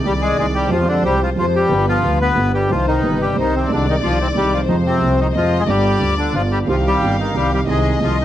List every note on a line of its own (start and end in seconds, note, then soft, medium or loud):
0.00 0.35 D#3 soft
0.00 0.70 D5 loud
0.04 0.36 C2 medium
0.04 0.37 C2 soft
0.04 0.37 C3 soft
0.04 0.13 G3 medium
0.04 0.36 G#3 soft
0.04 0.37 C4 soft
0.04 0.13 G4 medium
0.04 0.38 G#4 soft
0.21 0.37 G#3 medium
0.21 0.37 G#4 loud
0.36 0.69 C2 medium
0.36 0.70 C2 medium
0.36 0.70 C3 soft
0.36 0.69 D#3 soft
0.36 0.69 G#3 soft
0.36 0.46 G#3 medium
0.36 0.70 C4 soft
0.36 0.46 G#4 loud
0.36 0.70 G#4 soft
0.55 0.71 G3 medium
0.55 0.70 G4 medium
0.69 1.02 F2 medium
0.69 1.03 F2 medium
0.69 1.01 F3 medium
0.69 0.87 F3 medium
0.69 1.02 G#3 medium
0.69 1.03 C4 medium
0.69 0.88 F4 medium
0.69 1.35 C5 medium
0.73 1.04 G4 medium
0.88 1.04 D3 medium
0.88 1.03 D4 loud
1.02 1.36 C2 soft
1.02 1.36 C3 soft
1.02 1.34 F3 soft
1.02 1.20 G3 medium
1.02 1.35 G#3 soft
1.02 1.36 C4 soft
1.02 1.22 G4 loud
1.07 1.37 G4 soft
1.23 1.30 F3 medium
1.23 1.30 F4 medium
1.37 1.69 F2 medium
1.37 1.69 F3 soft
1.37 1.46 F3 medium
1.37 1.69 G#3 soft
1.37 1.69 C4 soft
1.37 1.46 F4 loud
1.37 1.70 G4 medium
1.37 1.68 C5 medium
1.56 1.86 G3 medium
1.56 1.86 G4 medium
1.69 2.02 G1 medium
1.69 2.03 G1 medium
1.69 2.02 G2 medium
1.69 2.00 D3 medium
1.69 2.01 G3 soft
1.69 2.02 B3 medium
1.69 2.53 B4 medium
1.73 2.03 F4 medium
1.89 2.19 F3 medium
1.89 2.19 F4 loud
2.01 2.35 D2 soft
2.01 2.03 D3 soft
2.01 2.32 D3 soft
2.01 2.33 G3 soft
2.01 2.35 B3 soft
2.01 2.36 F4 soft
2.06 2.36 D2 medium
2.21 2.52 B3 medium
2.21 2.52 B4 loud
2.34 2.68 G1 medium
2.34 2.69 G1 medium
2.34 2.68 G2 soft
2.34 2.67 D3 soft
2.34 2.68 G3 soft
2.34 2.69 B3 soft
2.38 2.69 F4 soft
2.54 2.70 G3 medium
2.54 2.71 G4 medium
2.68 3.02 C2 medium
2.68 3.03 C2 medium
2.68 2.70 C3 medium
2.68 3.00 C3 medium
2.68 3.01 D#3 soft
2.68 2.86 F3 medium
2.68 3.02 G3 soft
2.68 3.03 D#4 medium
2.68 2.86 F4 medium
2.68 3.01 C5 medium
2.88 3.18 D#3 medium
2.88 3.21 D#4 loud
3.01 3.35 G1 soft
3.01 3.36 G1 medium
3.01 3.35 G2 soft
3.01 3.32 C3 soft
3.01 3.33 D#3 soft
3.01 3.35 G3 soft
3.01 3.36 B4 medium
3.05 3.36 D#4 soft
3.21 3.37 G3 medium
3.21 3.36 G4 medium
3.34 3.68 C2 soft
3.34 3.66 C3 medium
3.34 3.67 D#3 soft
3.34 3.68 G3 soft
3.34 3.69 D#4 soft
3.34 3.67 C5 medium
3.39 3.69 C2 medium
3.39 3.54 D#3 medium
3.39 3.55 D#4 medium
3.56 3.70 C3 medium
3.56 3.72 C4 medium
3.67 4.01 C2 medium
3.67 3.69 C3 medium
3.67 3.99 C3 medium
3.67 4.01 D#3 soft
3.67 4.01 G#3 medium
3.67 4.64 D5 loud
3.71 4.02 C2 medium
3.71 3.87 D3 medium
3.71 3.87 D4 medium
3.71 4.02 D#4 medium
3.89 3.96 D#3 medium
3.89 3.96 D#4 loud
4.01 4.33 C2 soft
4.01 4.35 C2 medium
4.01 4.32 C3 soft
4.01 4.33 D#3 soft
4.01 4.19 F3 medium
4.01 4.34 G#3 soft
4.01 4.18 F4 loud
4.05 4.35 D#4 soft
4.21 4.28 C3 medium
4.21 4.28 C4 medium
4.33 4.67 C2 medium
4.33 4.68 C2 medium
4.33 4.66 C3 soft
4.33 4.67 D#3 soft
4.33 4.52 G3 medium
4.33 4.67 G#3 soft
4.33 4.53 G4 medium
4.37 4.68 D#4 soft
4.54 4.62 F3 medium
4.54 4.61 F4 medium
4.67 5.00 F2 medium
4.67 5.01 F2 medium
4.67 4.99 C3 medium
4.67 4.77 D#3 medium
4.67 5.00 F3 medium
4.67 5.01 G#3 medium
4.67 4.76 D#4 medium
4.67 5.35 C5 medium
4.71 5.02 F4 medium
4.86 5.17 C3 medium
4.86 5.20 C4 loud
5.02 5.34 C2 soft
5.02 5.34 C2 medium
5.02 5.32 C3 soft
5.02 5.33 F3 soft
5.02 5.34 G#3 soft
5.02 5.35 F4 soft
5.20 5.28 D#3 medium
5.20 5.27 D#4 medium
5.34 5.67 F2 medium
5.34 5.68 F2 medium
5.34 5.66 C3 soft
5.34 5.67 F3 medium
5.34 5.59 F3 medium
5.34 5.67 G#3 soft
5.34 5.62 F4 medium
5.34 5.68 D#5 medium
5.38 5.68 F4 soft
5.60 5.64 G#3 medium
5.60 5.64 G#4 medium
5.66 5.99 G1 medium
5.66 6.00 G1 medium
5.66 6.00 G2 medium
5.66 5.97 D3 medium
5.66 5.99 G3 medium
5.66 6.15 G3 medium
5.66 6.00 B3 medium
5.66 6.00 F4 medium
5.66 6.15 G4 medium
5.66 6.51 D5 loud
6.00 6.33 D2 soft
6.00 6.33 D2 medium
6.00 6.31 D3 soft
6.00 6.32 G3 soft
6.00 6.33 B3 soft
6.18 6.33 D3 medium
6.18 6.35 D4 medium
6.32 6.66 G1 soft
6.32 6.67 G1 medium
6.32 6.66 G2 soft
6.32 6.65 D3 soft
6.32 6.43 F3 medium
6.32 6.65 G3 soft
6.32 6.67 B3 soft
6.32 6.42 F4 medium
6.37 6.67 F4 soft
6.51 6.59 G3 medium
6.51 6.59 G4 medium
6.65 6.99 C2 medium
6.65 6.99 C3 medium
6.65 6.98 D#3 medium
6.65 6.76 F3 medium
6.65 6.99 G3 soft
6.65 6.99 C4 medium
6.65 6.99 C4 soft
6.65 6.99 D#4 medium
6.65 6.99 G4 medium
6.65 7.63 F5 loud
6.69 6.76 F4 medium
6.69 7.00 G4 medium
6.87 7.17 G3 medium
6.87 7.17 G4 loud
7.00 7.33 G1 soft
7.00 7.33 G1 medium
7.00 7.33 G2 soft
7.00 7.30 D#3 soft
7.00 7.31 G3 soft
7.00 7.32 C4 soft
7.00 7.33 C4 soft
7.00 7.32 D#4 soft
7.00 7.32 G4 soft
7.00 7.33 G4 soft
7.20 7.35 D#3 medium
7.20 7.36 D#4 medium
7.32 7.65 C2 medium
7.32 7.66 C2 medium
7.32 7.65 C3 medium
7.32 7.64 D#3 soft
7.32 7.65 G3 soft
7.32 7.65 C4 soft
7.32 7.66 C4 soft
7.32 7.66 D#4 soft
7.32 7.66 G4 soft
7.36 7.51 G3 medium
7.36 7.52 G4 medium
7.53 7.60 G3 medium
7.53 7.61 G4 medium
7.65 7.99 C2 medium
7.65 7.99 C3 medium
7.65 7.96 D#3 medium
7.65 7.98 G#3 medium
7.65 7.99 G#3 medium
7.65 7.98 C4 medium
7.65 7.99 C4 medium
7.65 7.98 D#4 medium
7.65 7.99 G#4 medium
7.65 8.00 G#4 medium
7.65 8.25 D#5 loud
7.70 7.99 G#4 medium
7.98 8.25 C2 soft
7.98 8.25 C2 medium
7.98 8.25 C3 soft
7.98 8.25 D#3 soft
7.98 8.25 G#3 soft
7.98 8.25 C4 soft
7.98 8.25 D#4 soft
7.98 8.25 G#4 soft
8.02 8.17 F3 medium
8.02 8.18 F4 loud
8.02 8.25 G#4 soft
8.21 8.25 D#3 medium
8.21 8.25 D#4 medium